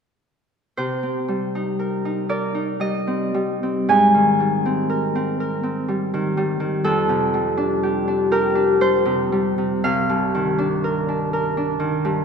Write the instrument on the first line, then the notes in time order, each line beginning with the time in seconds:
harp
0.77 C3 C5
1.03 C4
1.28 G3
1.55 D#4
1.79 A#4
2.05 D#4
2.29 A#4 D5
2.55 D#4
2.80 G3 D#5
3.07 C4
3.34 G3
3.63 C4
3.89 G#2 G#5
4.14 D#3
4.40 G3
4.66 C4
4.90 A#4
5.15 C4
5.40 A#4
5.63 C4
5.88 G3
6.14 D#3
6.37 G3
6.60 D#3
6.84 F2 A4
7.09 C3
7.34 G3
7.57 D4
7.83 G4
8.08 D4
8.31 G4 A#4
8.55 D4
8.81 G3 C5
9.05 C3
9.32 G3
9.58 C3
9.84 C2 F5
10.09 G2
10.35 D#3
10.58 D4
10.84 A#4
11.09 D4
11.33 A#4
11.57 D4
11.80 D#3
12.05 G2